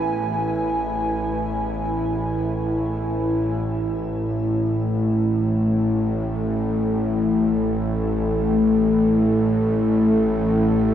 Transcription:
Already playing: A1 A2 E4 B4 G#5
3.67 A1 A2 A3
5.58 A4

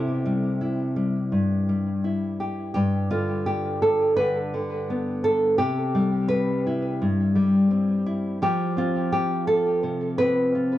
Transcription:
Already playing: C3 E4 G4
0.25 G3
0.61 E4
0.96 G3
1.32 G2
1.69 G3
2.04 E4
2.40 G4
2.74 G2 G4
3.11 D3 F4
3.46 G4
3.82 A4
4.16 D3 B4
4.54 D3
4.90 B3
5.24 A4
5.58 C3 G4
5.95 G3
6.28 B4
6.67 E4
7.02 G2
7.35 G3
7.71 C4
8.07 E4
8.42 F3 G4
8.77 C4 F4
9.13 G4
9.47 A4
9.83 C3
10.18 C4 B4
10.55 F4

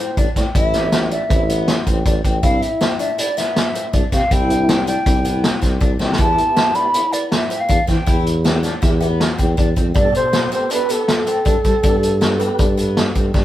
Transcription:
Already playing: C5
0.17 A1 D4, kick, closed hi-hat
0.36 A2 C4 D5, kick, snare, closed hi-hat
0.55 A1 E4 E5, kick, closed hi-hat
0.73 A3 C4 E4, snare, closed hi-hat
0.92 C4, snare, closed hi-hat
1.11 D4 E5, closed hi-hat
1.29 A1 A3 C4 E4, kick, closed hi-hat
1.49 B3, closed hi-hat
1.68 snare, closed hi-hat
1.87 A1 C4, kick, closed hi-hat
2.06 A1 D4, kick, closed hi-hat
2.25 A1 C4, kick, closed hi-hat
2.43 C2 C4 D4 E4 F5, kick, closed hi-hat
2.62 E5, closed hi-hat
2.81 C4, snare, closed hi-hat
2.99 D4 E5, closed hi-hat
3.18 E4 D5, closed hi-hat
3.37 B3 E5, snare, closed hi-hat
3.56 snare, closed hi-hat
3.75 C4, closed hi-hat
3.93 C2 D4, kick, closed hi-hat
4.12 C3 C4 F5, kick, snare, closed hi-hat
4.31 C2 E4 G5, kick, closed hi-hat
4.49 C4 D4 E4, closed hi-hat
4.69 C4, snare, closed hi-hat
4.87 D4 G5, closed hi-hat
5.06 C2 C4 D4 E4 G4, kick, closed hi-hat
5.25 B3, closed hi-hat
5.44 snare, closed hi-hat
5.62 C2 C4, kick, snare, closed hi-hat
5.81 C2 D4, kick, closed hi-hat
5.99 C2 C4, snare
6.12 snare
6.18 E2 B3 E4 G4 A5, kick, closed hi-hat
6.38 closed hi-hat
6.57 C4, snare, closed hi-hat
6.74 B3 D4 E4 G4 B5, closed hi-hat
6.94 E4, closed hi-hat
7.13 B3 D5, closed hi-hat
7.32 E5, snare, closed hi-hat
7.50 C4, closed hi-hat
7.61 F5
7.69 E2 D4, kick, closed hi-hat
7.87 E3 C4 G5, kick, snare, closed hi-hat
8.06 E2 E4, kick, closed hi-hat
8.26 closed hi-hat
8.45 B3 C4 E4 A4, snare, closed hi-hat
8.63 D4, snare, closed hi-hat
8.82 E2 B3 E4 G4, kick, snare, closed hi-hat
9.01 B3, closed hi-hat
9.20 snare, closed hi-hat
9.39 E2 C4, kick, closed hi-hat
9.57 E2 D4, kick, closed hi-hat
9.76 F2 C4, kick, closed hi-hat
9.94 G2 B2 D4 G4 A4 D5, kick, closed hi-hat
10.15 C5, closed hi-hat
10.33 B3, snare, closed hi-hat
10.52 B3 C4 G4 A4 C5, closed hi-hat
10.70 D4 B4, closed hi-hat
10.89 B3 A4, closed hi-hat
11.08 snare, closed hi-hat
11.27 C4, closed hi-hat
11.45 G2 D4, kick, closed hi-hat
11.65 G3 C4, kick, closed hi-hat
11.83 G2 B3 D4 G4 A4, kick, closed hi-hat
12.03 closed hi-hat
12.21 B3, snare, closed hi-hat
12.39 B3 C4 G4 B4, closed hi-hat
12.59 G2 D4, kick, closed hi-hat
12.78 B3, closed hi-hat
12.97 snare, closed hi-hat
13.15 G2 C4, kick, closed hi-hat
13.34 G2 D4, kick, snare

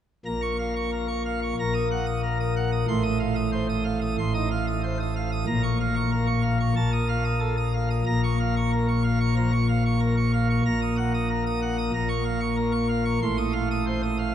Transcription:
0.26 A#1 A#2 A#5
0.42 C#6
0.59 F5
0.76 C#6
0.92 A#4
1.08 C#6
1.26 F5
1.42 C#6
1.59 A#1 A#2 A#5
1.74 D#6
1.91 F#5
2.06 D#6
2.23 A#4
2.40 D#6
2.56 F#5
2.72 D#6
2.88 A1 A2 C6
3.03 D#6
3.20 F5
3.36 D#6
3.52 C5
3.69 D#6
3.85 F5
4.01 D#6
4.19 A1 A2 C6
4.34 D#4 D#6
4.51 F5
4.67 D#6
4.83 C5
5.00 D#6
5.16 F5
5.32 D#6
5.47 A#1 A#2 A#5
5.63 C#6
5.80 F5
5.96 C#6
6.12 A#4
6.27 C#6
6.43 F5
6.60 C#6
6.76 A#1 A#2 A5
6.93 D#6
7.09 F5
7.25 D#6
7.40 A4
7.57 D#6
7.74 F5
7.90 D#6
8.06 A#1 A#2 A#5
8.24 C#6
8.40 F5
8.57 C#6
8.73 A#4
8.88 C#6
9.04 F5
9.20 C#6
9.36 F3 A#5
9.53 C#6
9.69 F5
9.86 C#6
10.00 A#4
10.17 C#6
10.34 F5
10.50 C#6
10.65 A#1 A#2 A#5
10.82 D#6
10.97 F#5
11.14 D#6
11.29 A#4
11.47 D#6
11.62 F#5
11.78 D#6
11.94 A#1 A#2 A#5
12.09 C#6
12.25 F5
12.41 C#6
12.57 A#4
12.72 C#6
12.89 F5
13.05 C#6
13.22 A1 A2 C6
13.38 D#6
13.53 F5
13.71 D#6
13.87 C5
14.03 D#6
14.19 F5

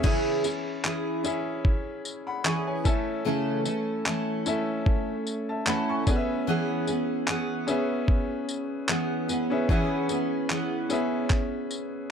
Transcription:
0.03 C#3 E3 C#4 E4 G#4 E5, kick, crash
0.43 C#4 E4 G#4, tambourine
0.84 E3 C#4 E4 G#4, clap
1.24 C#4 E4 G#4 E5, tambourine
1.65 kick
2.05 tambourine
2.27 F#5 B5
2.44 E3 C#4 E4 G#4 G#5 C#6, clap
2.67 C#5 G#5
2.84 A3 C#4 E4 A4 E5, kick, tambourine
3.25 C#3 E3 A3 C#4 A4
3.65 A3 C#4 A4, tambourine
4.06 E3 A3 C#4 A4, clap
4.46 A3 C#4 E4 A4 E5, tambourine
4.86 kick
5.27 tambourine
5.49 E5 A5
5.66 E3 A3 C#4 A4 F#5 B5, clap
5.89 G#5 C#6
6.07 B3 C#4 G#4 B4 D5, kick, tambourine
6.16 E5
6.47 E3 B3 C#4 G#4
6.87 B3 C#4 G#4, tambourine
7.28 E3 B3 C#4 G#4, clap
7.67 B3 C#4 G#4 B4 E5, tambourine
8.08 kick
8.49 tambourine
8.89 E3 B3 C#4 G#4, clap
9.28 B3 C#4 G#4, tambourine
9.50 C#4 G#4 B4 E5
9.69 E3 B3 C#4 G#4 B4 E5, kick
10.09 B3 C#4 G#4, tambourine
10.50 E3 B3 C#4 G#4, clap
10.89 B3 C#4 G#4 B4 E5, tambourine
11.30 kick, clap
11.71 tambourine

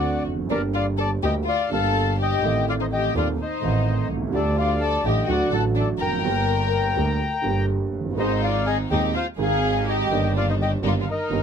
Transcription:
Already playing: D2 D3 A3 C4 F#4 D5 F#5
0.26 F1
0.33 E2
0.39 F2
0.47 G1 F#2 G2 D3 G3 D4
0.51 A#3 G4 A#4 D5
0.73 F4 D5 F5
0.97 A4 D5 A5
1.22 D2 D3 G3 A#3 G4 D#5 G5
1.44 F4 F5
1.49 D5
1.70 G1 G2 D3 G3 A#3 G4 A4 F5 A5
2.20 G4 D#5 G5
2.42 A1 A2 D#3 A3 C4 A4
2.69 F4 D5 F5
2.80 D#4 C5 D#5
2.91 G4 D#5 G5
3.14 D#1 D#2 D#3 A3 C4 F4 A4 D5 F5
3.40 D#4 C5 D#5
3.61 A1 A2 D#3 A3 C4
3.65 A4
4.10 C2
4.17 B1
4.22 C2
4.28 C#2 G3
4.33 D2 D3 A3 D4 G4 A4 D5
4.57 F4 D5 F5
4.81 A4 D5 A5
5.04 A1 A2 D3 G3 A3 G4 D#5 G5
5.27 D2 D3 F#3 A3 F#4 F#5
5.32 D5
5.50 A1 A2 D3 F#3 A3 F#4 A4 A5
5.55 F#5
5.75 D4 D5
5.80 A4
5.98 F1 A#4 G5 A#5
6.07 E2
6.12 F2
6.18 F#2
6.22 G1 G2 D3 G3 A#3
6.27 G4
6.96 D2 D3 G3 A#3 G4
7.42 G1 G2 D3 G3 A#3 G4
7.93 F#1
8.00 F1
8.05 F#1
8.12 G1 D#3
8.17 G#1 G#2 G#3 C4 D#4 G#4 C5 D#5
8.41 F4 D5 F5
8.65 G#4 D#5 G#5
8.90 D#1 D#2 D#3 G#3 C4 D#4 G4 G#4 D#5 G5
9.14 F4 C5 F5
9.37 G#1 G#2 D#3 G#3 C4 D#4 G#4
9.42 F5 G#5
9.86 G4 D#5 G5
10.10 G1 G2 D#3 G3 A#3 D4 G4
10.36 F4 D5 F5
10.49 D#4 C5 D#5
10.62 G4 D#5 G5
10.83 G1 G2 D#3 G3 A#3 D4 D#4 F4 G4
10.87 D5 F5
11.00 F4 F5
11.10 D#4 A#4 D#5
11.29 G1 G2 D#3 G3 A#3 D#4 G4

